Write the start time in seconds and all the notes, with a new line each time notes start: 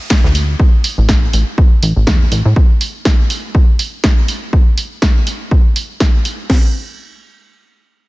0.10 kick, snare, ride
0.24 D2, snare
0.35 open hi-hat, ride
0.60 kick
0.84 open hi-hat
0.98 A1
1.09 kick, snare
1.33 A1, open hi-hat
1.58 kick
1.82 A1, open hi-hat
1.96 A1
2.07 E2, kick, snare
2.32 A1, open hi-hat
2.46 A2
2.56 kick
2.81 open hi-hat
3.05 kick, snare
3.30 open hi-hat
3.55 kick
3.79 open hi-hat
4.04 kick, snare
4.28 open hi-hat
4.53 kick
4.78 open hi-hat
5.02 kick, snare
5.27 open hi-hat
5.51 kick
5.76 open hi-hat
6.00 kick, snare
6.25 open hi-hat
6.50 kick, snare, crash